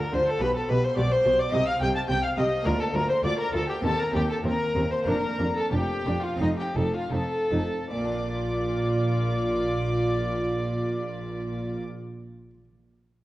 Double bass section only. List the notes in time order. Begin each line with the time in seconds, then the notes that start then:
0.13 D2
0.40 B1
0.68 B1
0.97 B1
1.25 B1
1.53 C2
1.81 C2
2.09 C2
2.38 C2
2.66 D2
2.95 D2
3.24 D2
3.53 D2
3.83 D#2
4.13 D#2
4.44 D#2
4.75 D#2
5.07 F1
5.39 F1
5.72 F1
6.05 F1
6.40 F1
6.76 F1
7.12 F1
7.51 F1
7.90 A#1